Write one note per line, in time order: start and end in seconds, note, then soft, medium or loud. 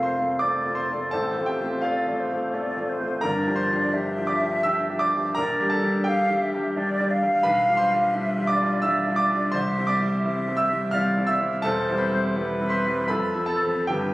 0.00 1.15 F1 medium
0.00 1.14 F2 medium
0.00 0.18 A3 soft
0.00 0.18 C4 soft
0.00 0.19 F4 soft
0.00 1.13 A4 medium
0.00 1.15 A#4 medium
0.00 0.43 F5 medium
0.00 1.11 A5 medium
0.00 1.15 A#5 medium
0.00 0.40 C6 medium
0.04 0.38 C5 medium
0.18 0.39 A3 soft
0.18 0.39 C4 soft
0.18 0.40 F4 soft
0.39 0.63 A3 soft
0.39 0.63 C4 soft
0.39 0.63 F4 soft
0.39 0.74 D5 medium
0.39 1.15 D5 medium
0.39 0.76 D6 medium
0.66 0.87 A3 soft
0.66 0.87 C4 soft
0.66 0.87 F4 soft
0.75 1.10 C5 medium
0.75 1.12 C6 medium
0.90 1.11 A3 soft
0.90 1.11 C4 soft
0.90 1.11 F4 soft
1.11 1.36 A1 medium
1.11 1.36 A2 medium
1.11 1.46 A4 medium
1.11 1.86 C5 medium
1.11 1.47 A5 medium
1.37 1.58 A3 soft
1.37 1.58 C4 soft
1.37 1.59 F4 soft
1.46 1.81 G4 soft
1.46 1.82 G5 medium
1.60 1.81 A3 soft
1.60 1.81 C4 soft
1.60 1.81 F4 soft
1.82 2.05 A3 soft
1.82 2.05 C4 soft
1.82 2.06 F4 medium
1.82 2.21 D5 medium
1.82 2.86 F5 medium
2.07 2.27 A3 soft
2.07 2.28 C4 soft
2.07 2.28 F4 soft
2.20 2.55 C5 medium
2.30 2.51 A3 soft
2.30 2.51 C4 soft
2.30 2.51 F4 soft
2.54 2.74 A3 soft
2.54 2.74 C4 soft
2.54 2.74 F4 soft
2.54 2.91 D5 medium
2.77 2.97 A3 soft
2.77 2.97 C4 soft
2.77 2.98 F4 soft
2.89 3.23 C5 medium
2.99 3.20 A3 soft
2.99 3.21 C4 soft
2.99 3.21 F4 soft
3.21 3.45 G1 medium
3.21 3.45 G2 medium
3.21 3.55 A#4 medium
3.21 3.95 D5 medium
3.21 3.57 A#5 medium
3.47 3.67 F3 soft
3.47 3.67 D4 soft
3.47 3.68 G4 medium
3.56 4.24 C5 medium
3.56 4.28 C6 medium
3.70 3.91 F3 soft
3.70 3.91 D4 soft
3.70 3.91 G4 soft
3.93 4.15 F3 soft
3.93 4.15 D4 soft
3.93 4.15 G4 medium
3.93 5.10 E5 medium
4.18 4.39 F3 soft
4.18 4.39 D4 soft
4.18 4.40 G4 medium
4.27 4.62 D5 medium
4.27 4.64 D6 medium
4.42 4.63 F3 soft
4.42 4.63 D4 soft
4.42 4.63 G4 soft
4.63 4.87 F3 soft
4.63 4.87 D4 medium
4.63 4.87 G4 medium
4.63 4.98 E5 medium
4.63 5.00 E6 medium
4.89 5.11 F3 soft
4.89 5.11 D4 soft
4.89 5.11 G4 medium
4.99 5.34 D5 medium
4.99 5.36 D6 medium
5.14 5.35 F3 soft
5.14 5.35 D4 soft
5.14 5.35 G4 medium
5.35 5.60 A#1 medium
5.35 5.69 A#4 medium
5.35 6.03 D5 medium
5.35 5.71 A#5 loud
5.60 5.81 G3 medium
5.60 5.81 D4 soft
5.60 5.81 G4 medium
5.70 6.04 A4 medium
5.70 6.06 A5 medium
5.83 6.04 G3 medium
5.83 6.05 D4 medium
5.83 6.04 G4 medium
6.04 6.28 G3 soft
6.04 6.28 D4 medium
6.04 6.29 G4 medium
6.04 6.43 F5 medium
6.04 7.10 G5 medium
6.30 6.51 G3 soft
6.30 6.51 D4 medium
6.30 6.51 G4 medium
6.42 6.78 E5 medium
6.54 6.75 G3 soft
6.54 6.75 D4 medium
6.54 6.75 G4 medium
6.77 6.98 G3 medium
6.77 6.98 D4 medium
6.77 6.98 G4 medium
6.77 7.12 D5 medium
7.00 7.20 G3 medium
7.00 7.21 D4 medium
7.00 7.21 G4 medium
7.11 8.15 F5 medium
7.23 7.43 G3 soft
7.23 7.43 D4 medium
7.23 7.43 G4 medium
7.43 7.67 B1 medium
7.43 7.76 B4 medium
7.43 7.78 B5 loud
7.69 7.89 G3 medium
7.69 7.89 D4 medium
7.69 7.90 F4 medium
7.77 8.45 C5 medium
7.77 8.48 C6 loud
7.91 8.12 G3 medium
7.91 8.12 D4 medium
7.91 8.13 F4 medium
8.14 8.36 G3 medium
8.14 8.36 D4 medium
8.14 8.36 F4 medium
8.14 8.52 E5 medium
8.38 8.59 G3 medium
8.38 8.59 D4 medium
8.38 8.59 F4 medium
8.47 8.81 D5 medium
8.47 8.84 D5 medium
8.47 8.83 D6 loud
8.62 8.82 G3 medium
8.62 8.82 D4 medium
8.62 8.83 F4 medium
8.82 9.05 G3 medium
8.82 9.06 D4 medium
8.82 9.06 F4 medium
8.82 9.57 D5 medium
8.82 9.16 E5 medium
8.82 9.18 E6 loud
9.07 9.28 G3 soft
9.07 9.29 D4 medium
9.07 9.29 F4 medium
9.16 9.51 D5 medium
9.16 9.53 D6 loud
9.31 9.52 G3 medium
9.31 9.52 D4 medium
9.31 9.52 F4 medium
9.52 9.77 C2 medium
9.52 9.86 C5 medium
9.52 9.88 C6 loud
9.56 10.25 E5 medium
9.78 9.99 G3 medium
9.78 9.99 C4 medium
9.78 9.99 E4 medium
9.87 10.55 D5 medium
9.87 10.58 D6 loud
10.01 10.22 G3 medium
10.01 10.22 C4 soft
10.01 10.22 E4 medium
10.24 10.45 G3 medium
10.24 10.45 C4 medium
10.24 10.46 E4 medium
10.24 10.96 E5 medium
10.48 10.69 G3 medium
10.48 10.69 C4 medium
10.48 10.69 E4 medium
10.57 10.91 E5 medium
10.57 10.93 E6 loud
10.70 10.91 G3 medium
10.70 10.92 C4 soft
10.70 10.92 E4 medium
10.91 11.15 G3 medium
10.91 11.15 C4 medium
10.91 11.16 E4 medium
10.91 11.40 D5 medium
10.91 11.26 F5 medium
10.91 11.28 F6 loud
11.18 11.39 G3 medium
11.18 11.39 C4 medium
11.18 11.39 E4 medium
11.27 11.62 E5 medium
11.27 11.64 E6 loud
11.40 11.62 G3 soft
11.40 11.62 C4 medium
11.40 11.63 E4 medium
11.62 11.87 E1 medium
11.62 11.88 E2 medium
11.62 11.97 A4 medium
11.62 12.38 C5 medium
11.62 11.99 A5 loud
11.88 12.10 G3 medium
11.88 12.10 C4 medium
11.88 12.10 E4 medium
11.98 12.68 B4 medium
11.98 12.71 B5 medium
12.11 12.33 G3 soft
12.11 12.34 C4 medium
12.11 12.34 E4 medium
12.36 12.58 G3 medium
12.36 12.58 C4 soft
12.36 12.58 E4 medium
12.36 13.11 B4 medium
12.60 12.83 G3 medium
12.60 12.83 C4 medium
12.60 12.83 E4 medium
12.70 13.07 C5 medium
12.70 13.09 C6 medium
12.85 13.08 G3 soft
12.85 13.08 C4 soft
12.85 13.08 E4 soft
13.08 13.35 F2 medium
13.08 13.89 A4 medium
13.08 13.46 B4 medium
13.08 13.48 B5 medium
13.36 13.60 F3 medium
13.36 13.60 C4 medium
13.46 13.86 A4 medium
13.46 13.88 A5 medium
13.63 13.87 F3 soft
13.63 13.88 C4 soft
13.87 14.14 G1 medium
13.87 14.14 G2 medium
13.87 14.14 G4 medium
13.87 14.14 B4 medium
13.87 14.14 G5 medium